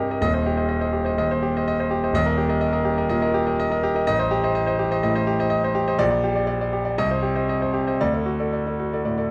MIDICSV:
0, 0, Header, 1, 2, 480
1, 0, Start_track
1, 0, Tempo, 481928
1, 222, Time_signature, 4, 2, 24, 8
1, 6943, Tempo, 515907
1, 9118, End_track
2, 0, Start_track
2, 0, Title_t, "Grand piano"
2, 0, Program_c, 0, 0
2, 0, Control_c, 0, 64, 127
2, 0, Note_on_c, 0, 36, 76
2, 0, Note_on_c, 0, 43, 66
2, 0, Note_on_c, 0, 67, 69
2, 0, Note_on_c, 0, 70, 63
2, 0, Note_on_c, 0, 75, 68
2, 102, Note_off_c, 0, 70, 0
2, 102, Note_on_c, 0, 70, 62
2, 110, Note_off_c, 0, 75, 0
2, 110, Note_on_c, 0, 75, 72
2, 173, Note_off_c, 0, 67, 0
2, 201, Note_off_c, 0, 75, 0
2, 210, Note_off_c, 0, 70, 0
2, 212, Note_on_c, 0, 27, 83
2, 216, Note_on_c, 0, 75, 104
2, 217, Note_on_c, 0, 39, 80
2, 242, Control_c, 0, 64, 0
2, 247, Note_off_c, 0, 36, 0
2, 248, Note_off_c, 0, 43, 0
2, 324, Note_off_c, 0, 75, 0
2, 335, Note_on_c, 0, 72, 62
2, 339, Note_on_c, 0, 75, 75
2, 378, Control_c, 0, 64, 127
2, 444, Note_off_c, 0, 72, 0
2, 447, Note_off_c, 0, 75, 0
2, 461, Note_on_c, 0, 67, 75
2, 567, Note_on_c, 0, 72, 63
2, 570, Note_on_c, 0, 75, 70
2, 650, Note_off_c, 0, 67, 0
2, 668, Note_off_c, 0, 75, 0
2, 679, Note_off_c, 0, 72, 0
2, 683, Note_on_c, 0, 75, 77
2, 794, Note_off_c, 0, 75, 0
2, 799, Note_on_c, 0, 72, 59
2, 809, Note_on_c, 0, 75, 70
2, 915, Note_off_c, 0, 72, 0
2, 920, Note_off_c, 0, 75, 0
2, 927, Note_on_c, 0, 67, 66
2, 1042, Note_on_c, 0, 72, 66
2, 1054, Note_on_c, 0, 75, 68
2, 1123, Note_off_c, 0, 67, 0
2, 1142, Note_off_c, 0, 27, 0
2, 1145, Note_off_c, 0, 39, 0
2, 1156, Note_off_c, 0, 72, 0
2, 1162, Note_off_c, 0, 75, 0
2, 1172, Note_on_c, 0, 39, 77
2, 1177, Note_on_c, 0, 75, 88
2, 1297, Note_off_c, 0, 75, 0
2, 1305, Note_on_c, 0, 72, 71
2, 1312, Note_on_c, 0, 75, 70
2, 1407, Note_off_c, 0, 72, 0
2, 1411, Note_off_c, 0, 75, 0
2, 1420, Note_on_c, 0, 67, 76
2, 1560, Note_on_c, 0, 75, 74
2, 1564, Note_on_c, 0, 72, 69
2, 1607, Note_off_c, 0, 67, 0
2, 1655, Note_off_c, 0, 75, 0
2, 1656, Note_off_c, 0, 72, 0
2, 1670, Note_on_c, 0, 75, 90
2, 1779, Note_off_c, 0, 75, 0
2, 1790, Note_on_c, 0, 72, 70
2, 1794, Note_on_c, 0, 75, 75
2, 1887, Note_off_c, 0, 72, 0
2, 1890, Note_off_c, 0, 75, 0
2, 1899, Note_on_c, 0, 67, 78
2, 2028, Note_on_c, 0, 72, 61
2, 2028, Note_on_c, 0, 75, 72
2, 2083, Note_off_c, 0, 67, 0
2, 2095, Note_off_c, 0, 39, 0
2, 2122, Note_on_c, 0, 27, 85
2, 2124, Note_off_c, 0, 75, 0
2, 2125, Note_off_c, 0, 72, 0
2, 2137, Note_on_c, 0, 39, 94
2, 2139, Note_on_c, 0, 75, 106
2, 2143, Control_c, 0, 64, 0
2, 2244, Note_off_c, 0, 75, 0
2, 2246, Note_on_c, 0, 70, 73
2, 2259, Note_on_c, 0, 75, 77
2, 2324, Control_c, 0, 64, 127
2, 2353, Note_off_c, 0, 70, 0
2, 2360, Note_off_c, 0, 75, 0
2, 2366, Note_on_c, 0, 67, 72
2, 2477, Note_on_c, 0, 70, 69
2, 2484, Note_on_c, 0, 75, 79
2, 2557, Note_off_c, 0, 67, 0
2, 2583, Note_off_c, 0, 75, 0
2, 2589, Note_off_c, 0, 70, 0
2, 2598, Note_on_c, 0, 75, 83
2, 2700, Note_off_c, 0, 75, 0
2, 2714, Note_on_c, 0, 70, 70
2, 2715, Note_on_c, 0, 75, 76
2, 2827, Note_off_c, 0, 70, 0
2, 2828, Note_off_c, 0, 75, 0
2, 2837, Note_on_c, 0, 67, 78
2, 2964, Note_on_c, 0, 70, 74
2, 2967, Note_on_c, 0, 75, 75
2, 3033, Note_off_c, 0, 67, 0
2, 3055, Note_off_c, 0, 27, 0
2, 3062, Note_off_c, 0, 39, 0
2, 3067, Note_off_c, 0, 75, 0
2, 3073, Note_off_c, 0, 70, 0
2, 3082, Note_on_c, 0, 75, 88
2, 3087, Note_on_c, 0, 46, 82
2, 3192, Note_off_c, 0, 75, 0
2, 3204, Note_on_c, 0, 70, 79
2, 3207, Note_on_c, 0, 75, 80
2, 3277, Note_off_c, 0, 46, 0
2, 3311, Note_off_c, 0, 70, 0
2, 3313, Note_off_c, 0, 75, 0
2, 3328, Note_on_c, 0, 67, 85
2, 3453, Note_on_c, 0, 75, 77
2, 3454, Note_on_c, 0, 70, 77
2, 3516, Note_off_c, 0, 67, 0
2, 3555, Note_off_c, 0, 75, 0
2, 3556, Note_off_c, 0, 70, 0
2, 3581, Note_on_c, 0, 75, 91
2, 3686, Note_off_c, 0, 75, 0
2, 3687, Note_on_c, 0, 70, 75
2, 3701, Note_on_c, 0, 75, 82
2, 3792, Note_off_c, 0, 70, 0
2, 3800, Note_off_c, 0, 75, 0
2, 3818, Note_on_c, 0, 67, 88
2, 3933, Note_on_c, 0, 70, 72
2, 3941, Note_on_c, 0, 75, 79
2, 4001, Note_off_c, 0, 67, 0
2, 4035, Note_off_c, 0, 70, 0
2, 4039, Note_off_c, 0, 75, 0
2, 4053, Note_on_c, 0, 33, 92
2, 4054, Note_on_c, 0, 75, 115
2, 4060, Control_c, 0, 64, 0
2, 4163, Note_off_c, 0, 75, 0
2, 4175, Note_on_c, 0, 72, 80
2, 4178, Note_on_c, 0, 75, 83
2, 4204, Control_c, 0, 64, 127
2, 4276, Note_off_c, 0, 72, 0
2, 4278, Note_off_c, 0, 75, 0
2, 4292, Note_on_c, 0, 67, 84
2, 4418, Note_on_c, 0, 72, 77
2, 4422, Note_on_c, 0, 75, 83
2, 4478, Note_off_c, 0, 67, 0
2, 4517, Note_off_c, 0, 75, 0
2, 4518, Note_off_c, 0, 72, 0
2, 4532, Note_on_c, 0, 75, 86
2, 4639, Note_off_c, 0, 75, 0
2, 4645, Note_on_c, 0, 72, 76
2, 4654, Note_on_c, 0, 75, 80
2, 4751, Note_off_c, 0, 72, 0
2, 4756, Note_off_c, 0, 75, 0
2, 4771, Note_on_c, 0, 67, 83
2, 4890, Note_on_c, 0, 72, 78
2, 4897, Note_on_c, 0, 75, 86
2, 4959, Note_off_c, 0, 67, 0
2, 4980, Note_off_c, 0, 33, 0
2, 4995, Note_off_c, 0, 72, 0
2, 4996, Note_off_c, 0, 75, 0
2, 5011, Note_on_c, 0, 45, 82
2, 5011, Note_on_c, 0, 75, 88
2, 5120, Note_off_c, 0, 75, 0
2, 5132, Note_on_c, 0, 72, 77
2, 5135, Note_on_c, 0, 75, 83
2, 5201, Note_off_c, 0, 45, 0
2, 5237, Note_off_c, 0, 72, 0
2, 5239, Note_off_c, 0, 75, 0
2, 5249, Note_on_c, 0, 67, 82
2, 5374, Note_on_c, 0, 72, 74
2, 5377, Note_on_c, 0, 75, 88
2, 5442, Note_off_c, 0, 67, 0
2, 5462, Note_off_c, 0, 75, 0
2, 5477, Note_on_c, 0, 75, 89
2, 5480, Note_off_c, 0, 72, 0
2, 5607, Note_off_c, 0, 75, 0
2, 5618, Note_on_c, 0, 72, 78
2, 5622, Note_on_c, 0, 75, 82
2, 5724, Note_off_c, 0, 72, 0
2, 5726, Note_off_c, 0, 75, 0
2, 5726, Note_on_c, 0, 67, 84
2, 5852, Note_on_c, 0, 75, 81
2, 5853, Note_on_c, 0, 72, 77
2, 5924, Note_off_c, 0, 67, 0
2, 5961, Note_on_c, 0, 34, 99
2, 5963, Note_off_c, 0, 72, 0
2, 5963, Note_off_c, 0, 75, 0
2, 5964, Note_on_c, 0, 74, 123
2, 5997, Control_c, 0, 64, 0
2, 6067, Note_off_c, 0, 74, 0
2, 6081, Note_on_c, 0, 74, 80
2, 6186, Control_c, 0, 64, 127
2, 6198, Note_off_c, 0, 74, 0
2, 6212, Note_on_c, 0, 67, 79
2, 6328, Note_on_c, 0, 74, 81
2, 6409, Note_off_c, 0, 67, 0
2, 6429, Note_off_c, 0, 74, 0
2, 6444, Note_on_c, 0, 74, 81
2, 6570, Note_off_c, 0, 74, 0
2, 6585, Note_on_c, 0, 74, 80
2, 6691, Note_off_c, 0, 74, 0
2, 6703, Note_on_c, 0, 67, 72
2, 6821, Note_on_c, 0, 74, 78
2, 6894, Note_off_c, 0, 67, 0
2, 6905, Note_off_c, 0, 34, 0
2, 6930, Note_off_c, 0, 74, 0
2, 6954, Note_on_c, 0, 36, 88
2, 6954, Note_on_c, 0, 75, 110
2, 6960, Control_c, 0, 64, 0
2, 7059, Note_off_c, 0, 75, 0
2, 7073, Note_on_c, 0, 72, 72
2, 7073, Note_on_c, 0, 75, 74
2, 7113, Control_c, 0, 64, 127
2, 7170, Note_off_c, 0, 72, 0
2, 7170, Note_off_c, 0, 75, 0
2, 7180, Note_on_c, 0, 67, 70
2, 7299, Note_on_c, 0, 72, 68
2, 7303, Note_on_c, 0, 75, 72
2, 7364, Note_off_c, 0, 67, 0
2, 7401, Note_off_c, 0, 72, 0
2, 7404, Note_off_c, 0, 75, 0
2, 7427, Note_on_c, 0, 75, 74
2, 7532, Note_off_c, 0, 75, 0
2, 7545, Note_on_c, 0, 72, 61
2, 7546, Note_on_c, 0, 75, 69
2, 7644, Note_off_c, 0, 72, 0
2, 7644, Note_off_c, 0, 75, 0
2, 7654, Note_on_c, 0, 67, 69
2, 7780, Note_on_c, 0, 72, 61
2, 7784, Note_on_c, 0, 75, 66
2, 7842, Note_off_c, 0, 67, 0
2, 7864, Note_off_c, 0, 36, 0
2, 7882, Note_off_c, 0, 72, 0
2, 7884, Note_off_c, 0, 75, 0
2, 7906, Control_c, 0, 64, 0
2, 7907, Note_on_c, 0, 38, 84
2, 7908, Note_on_c, 0, 74, 105
2, 8018, Note_off_c, 0, 74, 0
2, 8032, Note_on_c, 0, 69, 67
2, 8032, Note_on_c, 0, 74, 74
2, 8094, Control_c, 0, 64, 127
2, 8130, Note_off_c, 0, 69, 0
2, 8131, Note_off_c, 0, 74, 0
2, 8140, Note_on_c, 0, 66, 65
2, 8271, Note_on_c, 0, 74, 69
2, 8272, Note_on_c, 0, 69, 62
2, 8331, Note_off_c, 0, 66, 0
2, 8373, Note_off_c, 0, 69, 0
2, 8373, Note_off_c, 0, 74, 0
2, 8391, Note_on_c, 0, 74, 70
2, 8508, Note_off_c, 0, 74, 0
2, 8519, Note_on_c, 0, 69, 57
2, 8522, Note_on_c, 0, 74, 60
2, 8619, Note_off_c, 0, 69, 0
2, 8621, Note_off_c, 0, 74, 0
2, 8638, Note_on_c, 0, 66, 62
2, 8764, Note_on_c, 0, 69, 60
2, 8770, Note_on_c, 0, 74, 66
2, 8823, Note_off_c, 0, 66, 0
2, 8843, Note_off_c, 0, 38, 0
2, 8862, Note_off_c, 0, 69, 0
2, 8865, Note_off_c, 0, 74, 0
2, 8879, Note_on_c, 0, 45, 64
2, 8879, Note_on_c, 0, 74, 74
2, 8981, Note_off_c, 0, 74, 0
2, 8995, Note_on_c, 0, 74, 68
2, 8996, Note_on_c, 0, 69, 59
2, 9062, Note_off_c, 0, 45, 0
2, 9097, Note_off_c, 0, 69, 0
2, 9097, Note_off_c, 0, 74, 0
2, 9118, End_track
0, 0, End_of_file